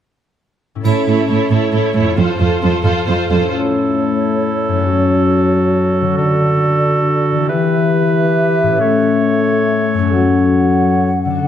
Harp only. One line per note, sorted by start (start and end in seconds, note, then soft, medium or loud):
0.75 2.18 A2 soft
0.75 2.16 C#4 soft
0.75 2.14 E4 soft
0.81 2.12 A4 soft
2.00 3.46 F2 soft
2.04 3.49 C4 soft
2.09 3.51 F4 soft
2.13 3.48 A4 soft
3.35 4.79 A2 soft
3.40 4.71 C#4 soft
3.45 4.83 E4 soft
3.49 4.81 A4 soft
4.68 6.11 F#2 soft
4.73 6.13 C#4 soft
4.77 6.09 F#4 soft
4.82 6.13 A4 soft
6.01 7.42 D3 soft
6.05 7.44 D4 soft
6.10 7.46 F#4 soft
6.14 7.49 A4 soft
7.32 8.73 E3 soft
7.36 8.75 B3 soft
7.41 8.71 E4 soft
7.45 8.80 G4 soft
8.63 10.04 A2 soft
8.67 9.97 C#4 soft
8.72 10.09 E4 soft
8.76 10.06 A4 soft
9.94 11.36 F#2 soft
9.98 11.38 C#4 soft
10.03 11.33 F#4 soft
10.07 11.38 A4 soft
11.25 11.48 D3 soft
11.30 11.48 D4 soft
11.35 11.48 F#4 soft
11.39 11.48 A4 soft